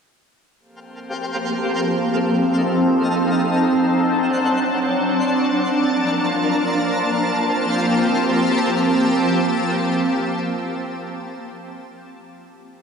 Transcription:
0.59 F3 A#3 C4 G4 A4 C5 F5 A5
2.19 D#4
3.79 F#3 D4 C5 F#5
5.39 F3 A#3 A#4 A5
6.99 F3 A#3 C4 F4 G4 A#4 C5 G5 A5

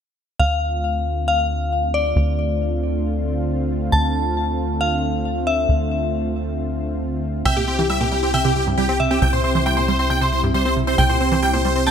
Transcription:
0.40 D2 D3 A3 C4 F4 F5
1.28 F5
1.94 D5
2.16 D2
3.92 D2 A5
4.81 F5
5.47 E5
5.69 D2
7.45 C2 C3 C4 E4 G4 E5 G5 E6
7.57 A#2 G4 G5
7.67 C4 G4 G5
7.78 E3 G4 G5
7.90 G3 E5 E6
8.01 A#2 G4 G5
8.11 G3 G4 G5
8.23 C4 G4 G5
8.34 C3 E5 G5 E6
8.45 C3 G4 G5
8.56 C2 G4 G5
8.67 G2
8.78 G3 G4 G5
8.89 C4 G4 G5
9.00 C3 E5
9.11 C4 G4 G5
9.22 C2 C3 G5 G6
9.33 A#2 C5 C6
9.44 C4 C5 C6
9.55 E3 C5 C6
9.66 G3 G5 G6
9.77 A#2 C5 C6
9.88 G3 C5 C6
9.99 C4 C5 C6
10.10 C3 G5 G6
10.21 C3 C5 C6
10.32 C2 C5 C6
10.43 G2
10.54 G3 C5 C6
10.65 C4 C5 C6
10.77 C3
10.87 C4 C5 C6
10.98 C2 C3 G5 G6
11.09 A#2 C5 C6
11.20 C4 C5 C6
11.31 E3 C5 C6
11.42 G3 G5 G6
11.53 A#2 C5 C6
11.64 G3 C5 C6
11.76 C4 C5 C6
11.86 C3 G5 A5 G6

